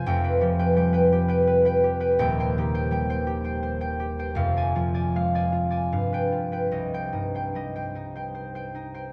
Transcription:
<<
  \new Staff \with { instrumentName = "Harp" } { \time 3/4 \key c \minor \tempo 4 = 80 << { g''2. | g''2. | r16 aes''4.~ aes''16 r16 g''8.~ | g''16 g''2~ g''8. | } \\ { <f' f''>16 <b' g''>16 g'16 <b' g''>16 g''16 <b' g''>16 g'16 <b' g''>16 b'16 <b' g''>16 g'16 <b' g''>16~ | <b' g''>16 <c'' g''>16 g'16 <c'' g''>16 g''16 <c'' g''>16 g'16 <c'' g''>16 c''16 <c'' g''>16 g'16 <c'' g''>16 | f''16 d''16 f'16 <d'' aes''>16 f''16 <d'' aes''>16 f'16 <d'' aes''>16 f''16 b'16 f'16 <b' g''>16 | ees''16 c''16 ees'16 <c'' g''>16 ees''16 <c'' g''>16 ees'16 <c'' g''>16 c''16 <c'' g''>16 ees'16 <c'' g''>16 | } >> }
  \new Staff \with { instrumentName = "Harp" } { \clef bass \time 3/4 \key c \minor <f,, f,>8 f8 g2 | <ees,, ees,>8 ees8 g2 | <f,, f,>8 f8 aes4 g,4 | c,8 g,8 g8 ees'4 ees'8 | }
>>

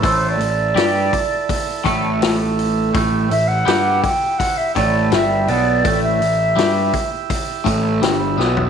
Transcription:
<<
  \new Staff \with { instrumentName = "Flute" } { \time 4/4 \key c \lydian \tempo 4 = 82 \tuplet 3/2 { c''8 d''4~ } d''4.~ d''16 r4 r16 | r8 e''16 fis''8. g''8 fis''16 e''16 d''8 e''8 d''8~ | d''16 e''4. r2 r16 | }
  \new Staff \with { instrumentName = "Transistor combo organ" } { \time 4/4 \key c \lydian << { <e' e''>1~ | <e' e''>1~ | <e' e''>1 | } \\ { a'1 | g'1~ | g'1 | } >> }
  \new Staff \with { instrumentName = "Clean electric guitar" } { \clef bass \time 4/4 \key c \lydian <a, a>8 a,8 <g g'>8 r4 <a, a>4. | <a, a>8 a,8 <g g'>8 r4 <a, a>8 <g, g>8 <b, b>8 | <a, a>8 a,8 <g g'>8 r4 <a, a>8 <g, g>8 <b, b>8 | }
  \new Staff \with { instrumentName = "Picked electric bass" } { \clef bass \time 4/4 \key c \lydian a,,8 a,,8 g,8 r4 a,,4. | a,,8 a,,8 g,8 r4 a,,8 g,,8 b,,8 | a,,8 a,,8 g,8 r4 a,,8 g,,8 b,,8 | }
  \new DrumStaff \with { instrumentName = "Drums" } \drummode { \time 4/4 <hho bd>8 hho8 <hho sn>8 <hho bd>8 <hho bd>8 <hho bd>8 <hho sn>8 hho8 | <hho bd>8 hho8 <hho sn>8 <hho bd>8 <hho bd>8 <hho bd>8 <hho sn>8 hho8 | <hho bd>8 hho8 <hho sn>8 <hho bd>8 <hho bd>8 <hho bd>8 <hho sn>8 sn16 tomfh16 | }
>>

